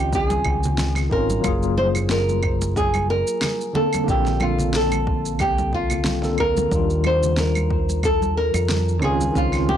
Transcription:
0.00 0.41 C#2 medium
0.00 1.10 D#3 medium
0.00 1.11 C4 medium
0.00 1.12 C#4 medium
0.00 1.13 F4 medium
0.00 0.14 G4 medium
0.13 0.26 G4 medium
0.13 kick loud
0.13 shaker medium
0.26 1.12 G#4 medium
0.30 muted conga medium
0.30 high conga medium
0.30 shaker soft
0.45 1.07 C#2 medium
0.45 kick medium
0.45 claves medium
0.63 low conga medium
0.63 shaker medium
0.78 snare loud
0.78 muted conga soft
0.78 high conga medium
0.78 shaker medium
0.96 snare soft
0.96 claves medium
0.96 shaker soft
1.10 1.39 G#1 medium
1.10 1.40 D#3 medium
1.10 1.40 C4 medium
1.10 1.41 C#4 medium
1.10 1.42 F4 medium
1.10 1.77 A#4 medium
1.10 kick medium
1.30 high conga medium
1.30 shaker medium
1.40 3.70 F#3 medium
1.40 3.71 A#3 medium
1.40 kick loud
1.40 muted conga medium
1.40 claves medium
1.45 3.22 F#1 medium
1.45 3.72 F4 medium
1.45 3.73 G#4 loud
1.45 shaker medium
1.63 shaker soft
1.77 1.86 C5 medium
1.77 high conga medium
1.95 muted conga soft
1.95 low conga medium
1.95 claves medium
1.95 shaker medium
2.10 2.77 A#4 medium
2.10 snare loud
2.10 shaker medium
2.29 high conga medium
2.29 shaker soft
2.43 kick loud
2.43 claves medium
2.62 muted conga medium
2.62 shaker medium
2.76 3.10 G#4 medium
2.76 kick loud
2.76 shaker medium
2.94 high conga medium
2.94 claves medium
2.94 shaker soft
3.10 3.72 A#4 medium
3.10 muted conga soft
3.27 shaker medium
3.42 snare loud
3.42 high conga medium
3.42 claves medium
3.42 shaker medium
3.61 shaker soft
3.73 4.03 D3 medium
3.73 4.04 A#3 medium
3.73 4.05 C4 medium
3.73 4.09 A4 medium
3.73 4.05 A4 medium
3.73 muted conga medium
3.73 low conga medium
3.93 high conga medium
3.93 claves medium
3.93 shaker medium
4.04 6.18 D3 medium
4.04 6.20 A#3 medium
4.08 5.40 A#1 medium
4.08 6.21 C4 medium
4.08 4.43 G4 medium
4.08 6.22 A4 medium
4.08 kick loud
4.08 shaker medium
4.26 snare soft
4.26 muted conga medium
4.26 shaker soft
4.40 4.75 F4 medium
4.40 high conga medium
4.40 claves medium
4.58 low conga medium
4.58 shaker medium
4.74 5.41 A4 medium
4.74 snare medium
4.74 shaker medium
4.92 muted conga medium
4.92 high conga medium
4.92 claves medium
4.92 shaker soft
5.07 kick loud
5.26 shaker medium
5.39 6.39 C2 medium
5.39 5.71 G4 medium
5.39 kick loud
5.39 muted conga soft
5.39 claves medium
5.39 shaker soft
5.58 high conga medium
5.58 shaker soft
5.73 6.41 F4 medium
5.73 kick medium
5.90 low conga medium
5.90 claves medium
5.90 shaker medium
6.04 snare loud
6.04 muted conga medium
6.04 high conga medium
6.04 shaker medium
6.22 6.67 D3 medium
6.22 6.68 A#3 medium
6.22 6.68 C4 medium
6.22 6.69 A4 medium
6.22 snare soft
6.22 shaker soft
6.38 6.67 D2 medium
6.38 7.06 A#4 medium
6.38 kick medium
6.38 claves medium
6.57 muted conga soft
6.57 high conga medium
6.57 shaker medium
6.68 8.50 D#2 medium
6.68 8.97 D#3 medium
6.68 8.98 G3 medium
6.68 kick loud
6.68 muted conga soft
6.68 shaker soft
6.73 8.99 D4 medium
6.73 9.01 F4 medium
6.90 shaker soft
7.04 7.39 C5 loud
7.04 high conga medium
7.04 claves medium
7.23 low conga medium
7.23 shaker medium
7.37 8.05 A#4 medium
7.37 snare medium
7.37 muted conga medium
7.37 shaker medium
7.55 high conga medium
7.55 claves medium
7.55 shaker soft
7.70 kick loud
7.89 muted conga soft
7.89 shaker medium
8.03 8.37 A4 medium
8.03 kick loud
8.03 claves medium
8.03 shaker medium
8.22 high conga medium
8.22 shaker soft
8.37 9.04 A#4 loud
8.54 9.02 F2 medium
8.54 muted conga medium
8.54 claves medium
8.54 shaker medium
8.69 snare medium
8.69 high conga medium
8.69 shaker medium
8.88 shaker soft
9.00 9.30 C#2 medium
9.00 9.30 D#3 medium
9.00 9.31 C4 medium
9.00 9.32 C#4 medium
9.00 9.32 F4 medium
9.00 muted conga soft
9.00 low conga medium
9.00 claves medium
9.04 9.37 G#4 medium
9.21 high conga medium
9.21 shaker medium
9.31 9.77 C#2 medium
9.31 9.77 D#3 medium
9.31 9.77 C4 medium
9.31 kick loud
9.36 9.77 C#4 medium
9.36 9.70 F4 medium
9.36 9.77 F4 loud
9.36 shaker soft
9.53 snare soft
9.53 claves medium
9.53 shaker soft
9.69 9.77 G4 medium
9.69 muted conga medium
9.69 high conga medium

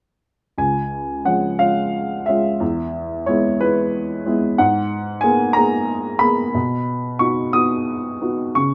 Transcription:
0.58 2.57 C#2 soft
0.58 1.28 G#5 medium
1.25 1.92 F3 soft
1.25 1.58 G#3 soft
1.25 1.59 C#4 soft
1.25 1.61 F#5 medium
1.59 2.25 G#3 soft
1.59 2.26 C#4 soft
1.59 2.26 F4 soft
1.59 2.23 F5 medium
2.26 2.61 G#3 soft
2.26 2.61 C#4 soft
2.26 2.61 F4 soft
2.26 2.90 E5 medium
2.60 4.55 E2 medium
3.26 3.59 G#3 soft
3.26 3.60 B3 soft
3.26 3.60 E4 soft
3.26 3.62 C#5 medium
3.60 4.24 G#3 soft
3.60 4.25 B3 soft
3.60 4.25 E4 soft
3.60 4.31 B4 medium
4.26 4.58 G#3 soft
4.26 4.58 B3 soft
4.26 4.58 E4 soft
4.58 6.50 G#2 medium
4.58 5.19 F#5 medium
5.21 5.55 A#3 soft
5.21 5.55 B3 soft
5.21 5.55 G#4 soft
5.21 5.52 G#5 medium
5.53 6.19 A#3 soft
5.53 6.20 B3 soft
5.53 6.20 G#4 soft
5.53 6.22 A#5 medium
6.19 6.53 A#3 soft
6.19 6.53 B3 soft
6.19 6.54 G#4 soft
6.19 6.82 B5 medium
6.55 8.51 B2 medium
7.19 7.52 B3 soft
7.19 7.52 D#4 soft
7.19 7.53 F#4 soft
7.19 7.54 C#6 medium
7.53 8.19 B3 soft
7.53 8.19 D#4 soft
7.53 8.19 F#4 soft
7.53 8.25 D#6 medium
8.21 8.54 B3 soft
8.21 8.54 D#4 soft
8.21 8.55 F#4 soft
8.55 8.74 C#3 soft
8.55 8.74 C#6 medium

